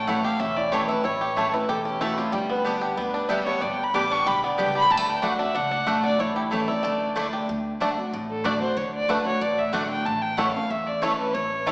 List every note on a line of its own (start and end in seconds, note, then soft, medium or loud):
0.00 0.22 A1 medium
0.00 0.37 A2 medium
0.00 0.27 A3 medium
0.00 0.37 C#4 medium
0.07 0.24 E3 medium
0.07 0.17 A3 medium
0.07 0.24 A3 medium
0.07 0.25 C#4 medium
0.07 0.54 E4 medium
0.07 0.18 E4 medium
0.07 0.23 E4 medium
0.07 0.18 C#5 loud
0.07 0.24 F#5 medium
0.07 0.18 A5 medium
0.24 0.40 C#4 soft
0.24 0.39 E4 medium
0.24 0.69 G4 medium
0.24 0.41 F5 medium
0.39 0.86 E1 medium
0.39 1.01 E2 medium
0.39 0.86 C#4 medium
0.39 0.58 E5 medium
0.56 0.87 E4 medium
0.56 0.74 D5 medium
0.72 0.89 E3 medium
0.72 0.82 A3 medium
0.72 0.89 A3 medium
0.72 0.89 C#4 loud
0.72 0.82 E4 medium
0.72 0.88 E4 loud
0.72 1.18 G4 medium
0.72 0.88 C#5 medium
0.72 0.82 C#5 medium
0.72 0.83 A5 loud
0.89 1.05 C#4 soft
0.89 1.03 E4 medium
0.89 1.04 E4 medium
0.89 1.06 B4 loud
1.04 1.51 A1 medium
1.04 1.66 A2 medium
1.04 1.50 E4 medium
1.04 1.55 C#5 medium
1.21 1.66 G4 medium
1.36 1.53 E3 medium
1.36 1.46 A3 medium
1.36 2.21 A3 medium
1.36 1.53 A3 medium
1.36 1.54 C#4 medium
1.36 1.46 E4 medium
1.36 1.53 E4 medium
1.36 1.47 C#5 medium
1.36 1.47 A5 medium
1.54 1.69 C#4 soft
1.54 1.98 E4 medium
1.54 1.68 E4 medium
1.54 1.71 B4 medium
1.69 2.15 E1 medium
1.69 2.30 E2 medium
1.69 2.15 G4 medium
1.69 1.86 A4 medium
1.85 2.30 C#4 medium
1.85 2.03 G4 medium
2.00 2.17 E3 medium
2.00 2.10 A3 medium
2.00 2.18 A3 medium
2.00 2.18 C#4 medium
2.00 2.33 E4 medium
2.00 2.10 E4 medium
2.00 2.17 E4 loud
2.00 2.20 F#4 medium
2.00 2.11 C#5 medium
2.00 2.11 A5 loud
2.18 2.33 C#4 soft
2.18 2.32 E4 medium
2.18 2.35 F4 medium
2.18 2.33 G4 medium
2.32 2.79 G1 medium
2.32 2.94 G2 medium
2.32 3.28 G3 medium
2.32 2.49 G4 medium
2.49 2.94 B3 medium
2.49 2.59 B4 medium
2.64 2.96 D3 medium
2.64 2.96 G3 medium
2.64 2.74 B3 medium
2.64 2.97 B3 loud
2.64 3.14 D4 medium
2.64 2.75 G4 medium
2.64 2.97 G4 loud
2.64 2.75 D5 medium
2.64 2.75 A5 medium
2.81 3.26 G4 medium
2.97 3.44 D2 medium
2.97 3.28 D3 medium
2.97 3.43 B3 medium
2.97 3.30 B4 medium
3.14 3.61 D4 medium
3.29 3.46 D3 medium
3.29 3.75 G3 medium
3.29 3.46 G3 loud
3.29 3.39 B3 medium
3.29 3.47 B3 loud
3.29 3.39 G4 loud
3.29 3.45 G4 medium
3.29 3.39 D5 medium
3.29 3.46 E5 medium
3.29 3.39 A5 medium
3.46 3.91 B3 medium
3.46 3.62 B3 soft
3.46 3.61 G4 medium
3.46 3.63 C#5 loud
3.61 3.85 G1 medium
3.61 4.23 G2 medium
3.61 4.11 D4 medium
3.61 3.74 D5 medium
3.73 3.85 G5 medium
3.83 3.96 B5 loud
3.94 4.21 A1 medium
3.94 4.25 D3 medium
3.94 4.40 G3 medium
3.94 4.25 G3 medium
3.94 4.04 B3 medium
3.94 4.25 B3 medium
3.94 4.04 G4 medium
3.94 4.26 G4 loud
3.94 4.04 D5 medium
3.94 4.04 A5 medium
3.94 4.14 D6 medium
4.11 4.55 D4 medium
4.11 4.29 C#6 loud
4.26 4.54 B1 medium
4.26 4.88 D3 medium
4.26 4.72 G4 medium
4.26 4.44 B5 loud
4.44 4.88 B3 medium
4.44 4.62 D5 medium
4.58 4.86 C#2 medium
4.58 4.89 G3 medium
4.58 4.68 B3 medium
4.58 4.90 B3 loud
4.58 4.91 D4 medium
4.58 4.68 G4 medium
4.58 4.90 G4 loud
4.58 4.68 D5 medium
4.58 4.76 G5 medium
4.58 4.68 A5 medium
4.75 4.90 G4 medium
4.75 4.93 B5 loud
4.90 5.37 D2 medium
4.90 5.21 D3 medium
4.90 4.97 G3 medium
4.90 5.08 A5 medium
4.97 5.23 A3 medium
5.08 5.25 G5 medium
5.22 5.39 D3 medium
5.22 5.32 A3 medium
5.22 5.39 A3 medium
5.22 5.38 D4 medium
5.22 5.39 D4 medium
5.22 5.32 F#4 medium
5.22 5.39 F#4 medium
5.22 5.32 D5 loud
5.22 5.33 F#5 loud
5.22 5.40 F#5 medium
5.39 5.53 D4 medium
5.39 5.55 D4 soft
5.39 5.54 F#4 medium
5.39 5.57 E5 loud
5.55 5.82 C#2 medium
5.55 6.17 A2 medium
5.55 5.70 D4 medium
5.55 6.04 F#5 loud
5.71 6.02 D4 medium
5.86 6.15 B1 medium
5.86 6.03 D3 medium
5.86 5.96 A3 loud
5.86 6.39 A3 medium
5.86 6.04 A3 loud
5.86 6.04 D4 medium
5.86 5.96 F#4 medium
5.86 6.03 F#4 medium
5.86 5.97 D5 medium
5.86 5.97 F#5 loud
6.04 6.19 D4 medium
6.04 6.20 D4 medium
6.04 6.19 F#4 medium
6.04 6.21 D5 loud
6.19 6.66 A1 medium
6.19 6.81 A2 medium
6.19 6.65 E4 medium
6.19 6.36 C#5 medium
6.36 6.54 E4 medium
6.36 6.80 G4 medium
6.51 6.68 E3 medium
6.51 6.82 A3 medium
6.51 6.61 A3 medium
6.51 6.68 A3 medium
6.51 6.69 C#4 medium
6.51 6.61 E4 medium
6.51 6.68 E4 medium
6.51 6.70 A4 medium
6.51 6.61 C#5 medium
6.51 6.62 A5 loud
6.68 6.84 C#4 medium
6.68 6.83 E4 medium
6.68 6.84 E4 medium
6.68 7.16 D5 medium
6.83 7.30 D2 medium
6.83 7.14 D3 medium
6.83 7.29 A3 medium
7.16 7.46 D3 medium
7.16 7.25 A3 loud
7.16 7.47 A3 medium
7.16 7.48 D4 medium
7.16 7.47 D4 loud
7.16 7.26 E4 loud
7.16 7.47 E4 loud
7.16 7.26 D5 medium
7.16 7.26 A5 medium
7.33 7.48 G4 medium
7.48 7.94 D2 medium
7.48 7.79 D3 medium
7.80 7.97 D3 medium
7.80 7.90 A3 medium
7.80 7.88 A3 medium
7.80 7.97 A3 medium
7.80 7.88 D4 medium
7.80 7.97 D4 medium
7.80 7.90 F#4 medium
7.80 7.97 F#4 loud
7.80 7.90 D5 medium
7.80 7.91 F#5 loud
7.98 8.13 D4 medium
7.98 8.12 F#4 medium
8.12 8.58 A1 medium
8.12 8.74 A2 medium
8.30 8.47 A4 medium
8.44 8.61 D3 medium
8.44 8.54 A3 medium
8.44 8.52 A3 medium
8.44 8.61 A3 medium
8.44 8.52 D4 medium
8.44 8.61 D4 loud
8.44 8.54 F#4 medium
8.44 8.60 F#4 loud
8.44 8.54 D5 loud
8.44 8.61 D5 loud
8.44 8.54 F#5 loud
8.61 8.77 D4 soft
8.61 8.76 F#4 medium
8.61 8.79 C5 medium
8.77 9.23 D2 medium
8.77 9.07 D3 medium
8.77 8.94 C#5 medium
8.95 9.11 D5 loud
9.09 9.25 D3 medium
9.09 9.18 A3 medium
9.09 9.17 A3 medium
9.09 9.25 A3 medium
9.09 9.26 D4 medium
9.09 9.17 D4 medium
9.09 9.19 F#4 medium
9.09 9.24 F#4 medium
9.09 9.25 B4 medium
9.09 9.19 D5 medium
9.09 9.19 F#5 medium
9.25 9.41 D4 soft
9.25 9.40 F#4 medium
9.25 9.43 C#5 medium
9.41 9.87 A1 medium
9.41 10.03 A2 medium
9.41 9.60 D5 medium
9.58 9.74 E5 medium
9.73 10.04 D3 loud
9.73 9.83 A3 medium
9.73 10.04 A3 medium
9.73 9.81 A3 medium
9.73 9.81 D4 medium
9.73 10.04 D4 loud
9.73 9.83 F#4 loud
9.73 10.05 F#4 loud
9.73 9.83 D5 loud
9.73 9.89 F#5 medium
9.73 9.83 F#5 loud
9.89 10.07 G5 loud
10.05 10.51 A1 medium
10.05 10.67 A2 medium
10.05 10.23 A5 medium
10.22 10.39 G5 loud
10.37 10.54 E3 medium
10.37 10.47 A3 medium
10.37 10.54 A3 medium
10.37 10.45 A3 medium
10.37 10.45 C#4 medium
10.37 10.54 C#4 medium
10.37 10.47 E4 medium
10.37 10.46 E4 medium
10.37 10.53 E4 medium
10.37 10.48 C#5 medium
10.37 10.53 F#5 medium
10.37 10.48 A5 loud
10.54 10.70 C#4 medium
10.54 10.69 E4 medium
10.54 10.71 F5 medium
10.70 11.31 E2 medium
10.70 11.16 E2 medium
10.70 10.88 E5 medium
10.87 11.04 D5 medium
11.02 11.32 E3 medium
11.02 11.11 A3 medium
11.02 11.33 A3 medium
11.02 11.10 A3 medium
11.02 11.10 C#4 medium
11.02 11.33 C#4 medium
11.02 11.11 E4 loud
11.02 11.33 E4 loud
11.02 11.10 E4 medium
11.02 11.18 C#5 medium
11.02 11.12 C#5 medium
11.02 11.12 A5 loud
11.19 11.35 B4 loud
11.34 11.72 A1 medium
11.34 11.72 A2 medium
11.34 11.72 C#5 medium
11.66 11.72 E3 medium
11.66 11.72 A3 medium
11.66 11.72 C#4 medium
11.66 11.72 E4 loud
11.66 11.72 E4 medium
11.66 11.72 E4 loud
11.66 11.72 C#5 medium
11.66 11.72 A5 loud